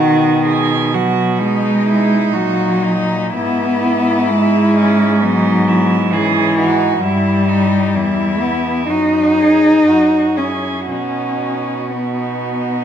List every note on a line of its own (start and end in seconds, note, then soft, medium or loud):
0.00 2.30 B2 medium
0.00 0.95 D#3 loud
0.00 0.43 F#4 medium
0.46 0.96 G#4 medium
0.94 1.41 F#3 loud
0.94 1.40 F#4 medium
1.39 2.34 G#3 loud
1.39 3.34 D#4 medium
1.39 1.88 D#4 medium
1.86 2.34 E4 medium
2.32 3.37 A#2 medium
2.32 3.35 F#3 loud
2.32 2.84 F#4 medium
2.83 3.34 D#4 medium
3.34 7.01 G#2 medium
3.34 4.32 B3 loud
3.34 5.23 E4 medium
3.34 4.28 E4 medium
4.31 5.23 G#3 loud
4.31 4.76 E4 medium
4.77 5.25 C#4 medium
5.21 6.14 F#3 loud
5.21 6.12 B3 medium
5.21 5.69 D#4 medium
5.68 6.14 E4 medium
6.12 7.01 E3 loud
6.12 6.59 C#4 medium
6.12 6.57 G#4 medium
6.58 7.03 D#4 medium
6.58 7.04 F#4 medium
7.01 7.96 G2 medium
7.01 8.42 G3 loud
7.01 7.50 E4 medium
7.01 7.94 E4 medium
7.48 7.96 D#4 medium
7.94 8.90 E2 medium
7.94 8.91 E4 medium
8.41 8.87 B3 medium
8.88 9.86 F#2 medium
8.88 10.39 D#4 loud
8.88 9.89 D#4 medium
8.88 9.41 F#4 medium
9.39 9.88 G#4 medium
9.86 10.90 F#2 soft
9.86 10.37 F#4 soft
9.86 10.39 F#4 soft
10.35 10.89 C#4 medium
10.35 10.93 E4 soft
10.35 10.87 G#4 soft
10.88 12.84 B2 soft
10.88 11.94 C#4 medium
10.88 11.83 D#4 soft
10.88 12.84 F#4 soft
11.92 12.84 B3 medium
11.92 12.84 D#4 soft